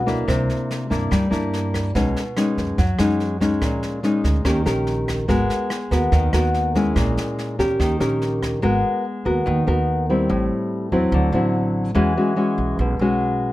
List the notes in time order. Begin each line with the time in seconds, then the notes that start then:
Already playing: B1 B2
0.06 A#3 D4 E4, kick, snare
0.28 C2 C3, kick, cross-stick, snare
0.50 snare
0.71 snare
0.90 G2 A#3 D4 E4, kick, snare
1.11 G2 G3, kick, cross-stick, snare
1.31 G2 A#3 D4 E4, snare
1.53 snare
1.74 kick, cross-stick, snare
1.95 B1 B2 G#3 C#4 D#4, kick, snare
2.16 snare
2.37 G#3 C#4 D#4, cross-stick, snare
2.58 F#2, kick, snare
2.78 F#2 F#3, kick, snare
2.98 F#2 G#3 C#4 D#4, cross-stick, snare
3.20 snare
3.40 G#3 C#4 D#4, kick, snare
3.62 A#1 A#2, kick, cross-stick, snare
3.83 snare
4.03 G#3 C#4 D#4, snare
4.24 D2, kick, snare
4.45 D#2 D#3 C#4 G4 A#4, kick, cross-stick, snare
4.65 A#1 C#4 G4 A#4, snare
4.87 snare
5.08 kick, cross-stick, snare
5.28 G#1 G#3 B3 F#4 A#4, kick, snare
5.50 snare
5.70 cross-stick, snare
5.91 D#2 B3 F#4 A#4, kick, snare
6.12 D#2 D#3, kick, snare
6.33 D#2 B3 F#4 A#4, cross-stick, snare
6.54 snare
6.75 G#3 C#4 E4, kick, snare
6.96 A#1 A#2, kick, cross-stick, snare
7.17 snare
7.39 snare
7.59 E2 C#4 G4 A#4, kick, snare
7.80 D#2 D#3, kick, cross-stick, snare
8.00 A#1 C#4 G4 A#4, snare
8.22 snare
8.42 kick, cross-stick, snare
8.62 G#1 G#3 B3 F#4 A#4
9.25 D#2 B3 F#4 A#4
9.46 D#2 D#3
9.67 D#2 B3 F#4 A#4
10.10 G3 C4 E4
10.30 A1 A2
10.92 E2 F#3 C4 E4
11.12 D2 D3
11.32 A1 F#3 C4 E4
11.95 E2 E3 G#3 C#4 F#4
12.17 G#3 C#4 F#4
12.36 G#3 C#4 F#4
12.58 B1
12.79 B1 B2
12.99 B1 G#3 C#4 F#4